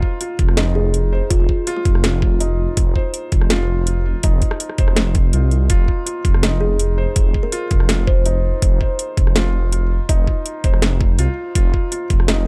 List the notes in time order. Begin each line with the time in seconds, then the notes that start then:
Already playing: D#4 F4 C5
0.02 kick
0.21 F4, closed hi-hat
0.39 F1, kick, closed hi-hat
0.48 cross-stick
0.57 D#4, snare, closed hi-hat
0.75 G#4
0.94 closed hi-hat
1.13 C5
1.30 F1 F4, kick, closed hi-hat
1.40 F4
1.49 kick
1.67 F4, closed hi-hat
1.77 F4
1.85 F1, kick, closed hi-hat
1.95 cross-stick
2.04 F4, snare, closed hi-hat
2.22 kick
2.40 D#4, closed hi-hat
2.77 F1, kick, closed hi-hat
2.96 C5, kick
3.14 closed hi-hat
3.32 F1, kick, closed hi-hat
3.41 cross-stick
3.50 F4, snare, closed hi-hat
3.87 F4, closed hi-hat
4.23 F1 D#4, kick, closed hi-hat
4.42 kick, closed hi-hat
4.51 cross-stick
4.60 closed hi-hat
4.69 cross-stick
4.78 F1 C5, kick, closed hi-hat
4.88 cross-stick
4.96 snare, closed hi-hat
5.15 kick, closed hi-hat
5.33 C2 F4, closed hi-hat
5.51 closed hi-hat
5.70 F1 F4, kick, closed hi-hat
5.88 kick
6.06 F4, closed hi-hat
6.25 F1, kick, closed hi-hat
6.34 cross-stick
6.43 D#4, snare, closed hi-hat
6.61 G#4
6.79 closed hi-hat
6.98 C5
7.16 F1, kick, closed hi-hat
7.34 kick
7.43 A#4
7.52 F4, closed hi-hat
7.71 F1, kick, closed hi-hat
7.80 cross-stick
7.89 F4, snare, closed hi-hat
8.07 C5, kick
8.26 D#4, closed hi-hat
8.62 F1, kick, closed hi-hat
8.80 C5, kick
8.99 closed hi-hat
9.17 F1, kick, closed hi-hat
9.27 cross-stick
9.36 F4, snare, closed hi-hat
9.72 F4, closed hi-hat
10.09 F1 D#4, kick, closed hi-hat
10.27 kick
10.46 closed hi-hat
10.64 F1 C5, kick, closed hi-hat
10.74 cross-stick
10.82 snare, closed hi-hat
11.01 kick
11.19 C2 F4, closed hi-hat
11.55 F1 F4, kick, closed hi-hat
11.74 kick
11.92 F4, closed hi-hat
12.10 F1, kick, closed hi-hat
12.20 cross-stick
12.28 D#4, snare, closed hi-hat